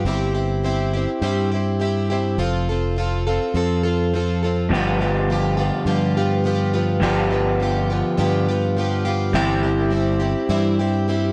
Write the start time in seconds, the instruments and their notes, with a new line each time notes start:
0.05 fingered electric bass G1, twelve-string acoustic guitar G3 C4 E4 G4
0.35 twelve-string acoustic guitar C4 E4 G4
0.63 twelve-string acoustic guitar G3 C4 E4 G4
0.93 twelve-string acoustic guitar C4 E4 G4
1.21 fingered electric bass G2, twelve-string acoustic guitar G3 C4 E4 G4
1.51 twelve-string acoustic guitar C4 E4 G4
1.79 twelve-string acoustic guitar G3 C4 E4 G4
2.10 twelve-string acoustic guitar C4 E4 G4
2.38 fingered electric bass F1, twelve-string acoustic guitar F3 C4 F4 A4
2.69 twelve-string acoustic guitar C4 F4 A4
2.96 twelve-string acoustic guitar F3 C4 F4 A4
3.27 twelve-string acoustic guitar C4 F4 A4
3.54 fingered electric bass F2, twelve-string acoustic guitar F3 C4 F4 A4
3.83 twelve-string acoustic guitar C4 F4 A4
4.13 twelve-string acoustic guitar F3 C4 F4 A4
4.43 twelve-string acoustic guitar C4 F4 A4
4.69 fingered electric bass G1, clean electric guitar G2 F3 G3
4.74 twelve-string acoustic guitar G2 D3 F3 B3 F4 G4
5.00 twelve-string acoustic guitar F3 B3 F4 G4
5.30 twelve-string acoustic guitar F3 B3 F4 G4
5.57 twelve-string acoustic guitar F3 B3 F4 G4
5.85 fingered electric bass G2, twelve-string acoustic guitar G2 D3 F3 B3 F4 G4
6.17 twelve-string acoustic guitar F3 B3 F4 G4
6.44 twelve-string acoustic guitar F3 B3 F4 G4
6.73 twelve-string acoustic guitar F3 B3 F4 G4
7.01 fingered electric bass G1, twelve-string acoustic guitar G2 D3 F3 B3 F4 G4, clean electric guitar G3
7.31 twelve-string acoustic guitar F3 B3 F4 G4
7.60 twelve-string acoustic guitar F3 B3 F4 G4
7.90 twelve-string acoustic guitar F3 B3 F4 G4
8.18 twelve-string acoustic guitar G2 D3 F3 B3 F4 G4, fingered electric bass G2
8.49 twelve-string acoustic guitar F3 B3 F4 G4
8.77 twelve-string acoustic guitar F3 B3 F4 G4
9.05 twelve-string acoustic guitar F3 B3 F4 G4
9.33 fingered electric bass G1, twelve-string acoustic guitar G2 E3 G3 C4 E4 G4
9.63 twelve-string acoustic guitar G3 C4 E4 G4
9.90 twelve-string acoustic guitar G3 C4 E4 G4
10.20 twelve-string acoustic guitar G3 C4 E4 G4
10.49 fingered electric bass G2, twelve-string acoustic guitar G2 E3 G3 C4 E4 G4
10.79 twelve-string acoustic guitar G3 C4 E4 G4
11.08 twelve-string acoustic guitar G3 C4 E4 G4